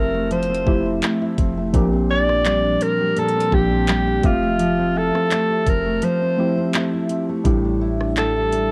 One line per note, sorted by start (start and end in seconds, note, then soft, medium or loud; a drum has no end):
0.00 0.64 F1 loud
0.00 0.30 F3 medium
0.00 0.66 F3 medium
0.00 0.13 A3 medium
0.00 0.66 A3 medium
0.00 0.49 C4 medium
0.00 0.67 C4 medium
0.00 0.65 E4 medium
0.00 0.68 G4 medium
0.00 0.32 A#4 medium
0.00 1.76 E5 medium
0.14 1.01 A3 medium
0.31 2.48 F3 medium
0.31 0.99 C5 medium
0.31 closed hi-hat medium
0.43 closed hi-hat medium
0.50 0.85 C4 medium
0.55 closed hi-hat medium
0.66 1.01 F1 loud
0.66 1.37 F3 medium
0.66 1.37 A3 medium
0.66 1.37 C4 medium
0.66 1.20 E4 medium
0.66 1.38 E4 medium
0.66 1.38 G4 medium
0.66 kick medium
0.86 1.38 C4 medium
1.02 1.56 A3 medium
1.02 clap loud
1.02 closed hi-hat medium
1.21 1.81 E4 medium
1.38 1.72 F1 loud
1.38 1.93 C4 medium
1.38 kick medium
1.38 closed hi-hat medium
1.57 1.81 A3 medium
1.73 2.77 A#1 loud
1.73 3.15 A#2 medium
1.73 2.69 F3 medium
1.73 2.69 A#3 medium
1.73 2.69 C4 medium
1.73 2.69 D4 medium
1.73 2.70 G4 loud
1.73 kick loud
1.73 closed hi-hat medium
1.93 2.28 C4 medium
2.10 2.63 D4 medium
2.10 2.84 D5 loud
2.29 2.81 C4 medium
2.29 cross-stick medium
2.45 2.99 G3 medium
2.45 clap loud
2.45 closed hi-hat medium
2.64 3.51 D4 medium
2.81 3.36 C4 medium
2.81 3.20 A#4 loud
2.81 closed hi-hat medium
3.00 3.87 G3 medium
3.16 4.31 A#2 medium
3.16 3.56 A4 loud
3.16 closed hi-hat medium
3.29 closed hi-hat medium
3.36 3.71 C4 medium
3.40 closed hi-hat medium
3.51 4.21 A#1 loud
3.51 4.22 F3 medium
3.51 4.23 A#3 medium
3.51 4.23 C4 medium
3.51 4.06 D4 medium
3.51 4.23 D4 medium
3.51 4.24 G4 medium
3.51 4.27 G4 loud
3.51 kick loud
3.71 4.78 C4 medium
3.87 4.31 G3 medium
3.87 clap loud
3.87 closed hi-hat medium
4.07 4.31 D4 medium
4.23 5.11 F1 loud
4.23 5.38 F3 medium
4.23 4.58 F3 medium
4.23 5.38 A3 medium
4.23 5.39 C4 medium
4.23 4.99 F4 medium
4.23 5.39 G4 medium
4.23 5.39 E5 medium
4.23 kick loud
4.23 closed hi-hat medium
4.43 5.31 A3 medium
4.59 6.01 F3 medium
4.59 closed hi-hat medium
4.79 5.13 C4 medium
4.95 5.50 E4 medium
4.95 5.70 A4 loud
5.15 5.65 C4 medium
5.15 cross-stick medium
5.31 5.86 A3 medium
5.31 clap loud
5.31 closed hi-hat medium
5.50 6.38 E4 medium
5.67 6.01 F1 loud
5.67 6.21 C4 medium
5.67 6.06 A#4 medium
5.67 kick loud
5.67 closed hi-hat medium
5.86 6.74 A3 medium
6.02 7.53 F3 medium
6.02 6.75 C5 medium
6.02 closed hi-hat medium
6.22 6.56 C4 medium
6.37 7.08 F3 medium
6.37 7.09 A3 medium
6.37 7.09 C4 medium
6.37 6.93 E4 medium
6.37 7.09 E4 medium
6.37 7.10 G4 medium
6.57 7.09 C4 medium
6.73 7.29 A3 medium
6.73 clap loud
6.73 closed hi-hat medium
6.93 7.68 E4 medium
7.09 7.53 C4 medium
7.09 closed hi-hat medium
7.29 8.17 A3 medium
7.44 8.72 A1 loud
7.44 8.72 A2 medium
7.44 8.40 G3 medium
7.44 8.40 A3 medium
7.44 8.40 D4 medium
7.44 8.41 E4 medium
7.44 8.41 G4 loud
7.44 kick loud
7.44 closed hi-hat medium
7.65 7.99 D4 medium
7.81 8.36 E4 medium
8.01 8.52 D4 medium
8.01 cross-stick medium
8.17 8.71 G3 medium
8.17 8.72 A4 loud
8.17 clap loud
8.17 closed hi-hat medium
8.36 8.72 E4 medium
8.52 8.72 D4 medium
8.52 closed hi-hat medium